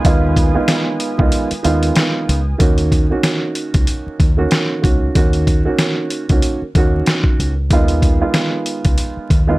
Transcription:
Already playing: analog synth pad F4 B4 G#5 D#6
0.04 fingered electric bass D#2, upright piano D#3 G#3 B3 F4, kick, closed hi-hat
0.37 kick, closed hi-hat
0.54 upright piano D#3 G#3 B3 F4
0.68 snare, closed hi-hat
1.00 closed hi-hat
1.17 fingered electric bass C#2, upright piano D#3 G#3 B3 F4, kick
1.32 closed hi-hat
1.51 muted fingered electric bass stroke, closed hi-hat
1.63 fingered electric bass D#2, upright piano D#3 G#3 B3 F4, closed hi-hat
1.83 closed hi-hat
1.96 snare, closed hi-hat
2.29 fingered electric bass C#2, closed hi-hat
2.58 fingered electric bass D#2, upright piano D#3 A#3 C#4 F#4, kick, closed hi-hat
2.78 closed hi-hat
2.92 kick, closed hi-hat
3.10 upright piano D#3 A#3 C#4 F#4
3.23 snare, closed hi-hat
3.55 closed hi-hat
3.74 fingered electric bass C#2, kick, closed hi-hat
3.87 closed hi-hat
4.07 muted fingered electric bass stroke
4.20 fingered electric bass D#2, kick, closed hi-hat
4.37 upright piano D#3 A#3 C#4 F#4
4.51 snare, closed hi-hat
4.81 fingered electric bass C#2, upright piano D#3 A#3 C#4 F#4, kick, closed hi-hat
5.15 fingered electric bass D#2, upright piano D#3 A#3 C#4 F#4, kick, closed hi-hat
5.33 closed hi-hat
5.47 kick, closed hi-hat
5.65 upright piano D#3 A#3 C#4 F#4
5.79 snare, closed hi-hat
6.10 closed hi-hat
6.29 fingered electric bass C#2, upright piano D#3 A#3 C#4 F#4, kick, closed hi-hat
6.42 closed hi-hat
6.62 muted fingered electric bass stroke
6.75 fingered electric bass D#2, upright piano D#3 A#3 C#4 F#4, kick, closed hi-hat
7.06 snare, closed hi-hat
7.24 kick
7.39 fingered electric bass C#2, closed hi-hat
7.71 fingered electric bass D#2, upright piano D#3 G#3 B3 F4, kick, closed hi-hat
7.88 closed hi-hat
8.02 kick, closed hi-hat
8.20 upright piano D#3 G#3 B3 F4
8.34 snare, closed hi-hat
8.66 closed hi-hat
8.85 fingered electric bass C#2, kick, closed hi-hat
8.98 closed hi-hat
9.17 muted fingered electric bass stroke
9.30 fingered electric bass D#2, kick, closed hi-hat
9.47 upright piano D#3 G#3 B3 F4

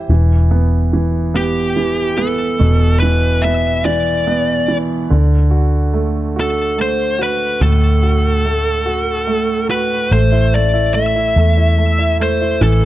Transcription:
Already playing: grand piano E4 G4
0.09 fingered electric bass E1, grand piano E3
0.51 grand piano B3
0.93 grand piano E3
1.34 grand piano B3, lead electric guitar G4
1.76 grand piano E3
2.18 grand piano B3, lead electric guitar A4
2.59 fingered electric bass E1, grand piano B2
3.00 grand piano E3, lead electric guitar B4
3.42 grand piano B3, lead electric guitar E5
3.85 grand piano E3, lead electric guitar D5
4.27 grand piano B3
4.68 grand piano E3
5.10 fingered electric bass D2, grand piano D3
5.51 grand piano F#4
5.93 grand piano A3
6.36 grand piano F#4, lead electric guitar A4
6.77 grand piano A3, lead electric guitar C5
7.19 grand piano F#4
7.23 lead electric guitar B4
7.61 fingered electric bass D2, grand piano A2, lead electric guitar A4
8.03 grand piano F#4
8.45 grand piano A3
8.86 grand piano F#4
9.27 grand piano A3
9.70 grand piano F#4, lead electric guitar B4
10.11 fingered electric bass A1, grand piano A3, lead electric guitar C5
10.32 grand piano E4
10.54 grand piano A3, lead electric guitar D5
10.74 grand piano E4
10.94 grand piano A3, lead electric guitar E5
11.16 grand piano E4
11.36 fingered electric bass E2, grand piano A3
11.57 grand piano E4
11.78 grand piano A3
11.99 grand piano E4
12.20 grand piano A3, lead electric guitar C5
12.41 grand piano E4
12.61 fingered electric bass A1, grand piano E3, lead electric guitar A4

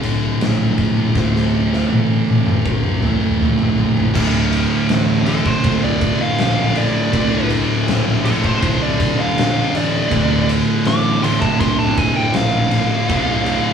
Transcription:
Already playing: fingered electric bass C2, distorted electric guitar D2 A2 D3
0.03 distorted electric guitar D2 A2 D3, ride
0.39 fingered electric bass A#1, distorted electric guitar D2 A2 D3, snare, ride
0.78 kick, ride
1.14 fingered electric bass D1, distorted electric guitar D2 A2 D3, kick, snare
1.36 snare
1.73 snare
1.89 fingered electric bass A1, high tom
2.28 high tom
2.47 mid tom
2.65 fingered electric bass C2, kick
2.84 mid tom
3.01 distorted electric guitar D2 A2 D3, mid tom
3.38 fingered electric bass A#1, distorted electric guitar D2 A2 D3, mid tom
3.59 floor tom
3.78 floor tom
3.97 floor tom
4.13 fingered electric bass D1, distorted electric guitar D2 A2 D3, kick, crash
4.53 ride
4.89 fingered electric bass A1, snare, ride
5.26 distorted electric guitar D2 A2 D3, lead electric guitar A4, ride
5.46 lead electric guitar C5, kick
5.63 fingered electric bass C2, distorted electric guitar D2 A2 D3, kick, ride
5.84 lead electric guitar D5
6.01 kick, ride
6.22 lead electric guitar F5
6.38 fingered electric bass A#1, snare, ride
6.75 lead electric guitar D5, ride
7.12 fingered electric bass C2, distorted electric guitar D2 A2 D3, kick, ride
7.50 ride
7.88 fingered electric bass A#1, snare, ride
8.23 distorted electric guitar D2 A2 D3, lead electric guitar A4, ride
8.44 lead electric guitar C5, kick
8.61 fingered electric bass C2, distorted electric guitar D2 A2 D3, kick, ride
8.83 lead electric guitar D5
9.00 kick, ride
9.20 lead electric guitar F5
9.36 fingered electric bass A#1, snare, ride
9.74 fingered electric bass A1, lead electric guitar D5, ride
10.09 fingered electric bass D1, distorted electric guitar D2 A2 D3, kick, ride
10.49 ride
10.85 fingered electric bass A1, lead electric guitar D6, snare, ride
11.23 distorted electric guitar D2 A2 D3, lead electric guitar C6, ride
11.41 lead electric guitar A5, kick
11.58 fingered electric bass C2, distorted electric guitar D2 A2 D3, lead electric guitar C6, kick, ride
11.79 lead electric guitar A5
11.98 lead electric guitar G#5, kick, ride
12.16 lead electric guitar G5
12.34 fingered electric bass A#1, lead electric guitar F5, snare, ride
12.71 ride
13.09 fingered electric bass C2, distorted electric guitar D2 A2 D3, kick, ride
13.46 ride

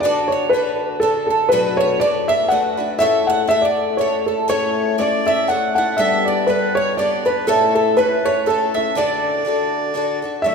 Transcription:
0.00 twelve-string acoustic guitar D3 D4, felt piano D5
0.05 twelve-string acoustic guitar F#4 A4, mandolin D5
0.28 felt piano C#5
0.32 mandolin C#5
0.49 twelve-string acoustic guitar D3, felt piano B4
0.54 twelve-string acoustic guitar D4 F#4 A4, mandolin B4
1.00 twelve-string acoustic guitar D3 D4, felt piano A4, mandolin A4
1.04 twelve-string acoustic guitar F#4 A4
1.27 felt piano A4, mandolin A4
1.49 twelve-string acoustic guitar B2 F#3 A3, felt piano B4, mandolin B4
1.53 twelve-string acoustic guitar D4 F#4 B4
1.77 felt piano C#5, mandolin C#5
2.00 twelve-string acoustic guitar A3 D4 F#4, felt piano D5, mandolin D5
2.04 twelve-string acoustic guitar B4
2.28 felt piano E5, mandolin E5
2.48 twelve-string acoustic guitar A3 D4 F#4, felt piano F#5, mandolin F#5
2.53 twelve-string acoustic guitar B4
2.77 twelve-string acoustic guitar A3 D4 F#4 B4
2.99 twelve-string acoustic guitar A2 A3 C#4 E4 A4, felt piano E5, mandolin E5
3.27 felt piano F#5, mandolin F#5
3.47 twelve-string acoustic guitar A3 E4 A4, felt piano E5, mandolin E5
3.62 felt piano D5, mandolin D5
3.97 twelve-string acoustic guitar A3 C#4 E4 A4, felt piano C#5, mandolin C#5
4.26 felt piano A4, mandolin A4
4.48 twelve-string acoustic guitar A2 A3 C#4 E4 A4, mandolin C#5, felt piano C#5, accordion C#5
4.98 twelve-string acoustic guitar A3 C#4 E4 A4, mandolin D5, felt piano D5, accordion D5
5.25 twelve-string acoustic guitar C#4 E4 A4, felt piano E5, mandolin E5
5.48 twelve-string acoustic guitar A3 C#4 E4 A4, felt piano F#5, mandolin F#5, accordion F#5
5.75 twelve-string acoustic guitar E4 A4, felt piano F#5, accordion F#5, mandolin F#5
5.79 twelve-string acoustic guitar C#4
5.97 twelve-string acoustic guitar G3 B3 D4 A4, felt piano E5, accordion E5, mandolin E5
6.25 felt piano D5, mandolin D5, accordion D5
6.47 twelve-string acoustic guitar G3 B3 D4 A4, felt piano B4, accordion B4, mandolin B4
6.75 felt piano C#5, accordion C#5, mandolin C#5
6.97 twelve-string acoustic guitar G3 B3 D4 A4, felt piano D5, accordion D5, mandolin D5
7.25 twelve-string acoustic guitar B3 D4 A4, felt piano B4, accordion B4, mandolin B4
7.47 twelve-string acoustic guitar A2 A3 C#4 E4 A4, accordion A4, felt piano A4, mandolin A4
7.75 felt piano A4, mandolin A4, accordion A4
7.97 twelve-string acoustic guitar A3 C#4 E4 A4, accordion B4, felt piano B4, mandolin B4
8.25 felt piano C#5, mandolin C#5
8.46 twelve-string acoustic guitar A3 C#4 E4, accordion A4, mandolin A4, felt piano A4
8.50 twelve-string acoustic guitar A4
8.74 twelve-string acoustic guitar C#4 E4 A4, mandolin E5, accordion E5, felt piano E5
8.95 twelve-string acoustic guitar D3 D4 F#4 A4, accordion D5, mandolin D5, felt piano D5
9.45 twelve-string acoustic guitar D3 D4 F#4 A4
9.94 twelve-string acoustic guitar D3 D4 F#4 A4
10.22 twelve-string acoustic guitar D4 F#4 A4
10.42 twelve-string acoustic guitar D3 F#3 A3 D4 E4, felt piano E5, accordion E5

